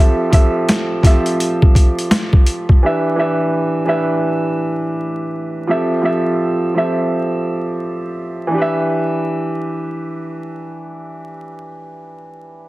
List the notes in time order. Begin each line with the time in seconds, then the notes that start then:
Already playing: F3 C4 G4
0.00 A4 E5
0.30 F3 C4 G4 A4 E5, kick, closed hi-hat
0.69 snare, closed hi-hat
1.03 F3 C4 G4 A4 E5, kick, snare, closed hi-hat
1.26 closed hi-hat
1.40 closed hi-hat
1.62 kick
1.75 kick, closed hi-hat
1.99 closed hi-hat
2.11 snare, closed hi-hat
2.33 kick
2.46 closed hi-hat
2.69 kick
2.82 E3 D4 G4 B4 E5
3.16 E3 D4 G4 B4 E5
3.85 E3 D4 G4 B4 E5
5.67 F3 C4 G4 A4 E5
6.02 F3 C4 G4 A4 E5
6.74 F3 C4 G4 A4 E5
8.47 E3 D4
8.54 G4 B4
8.61 E5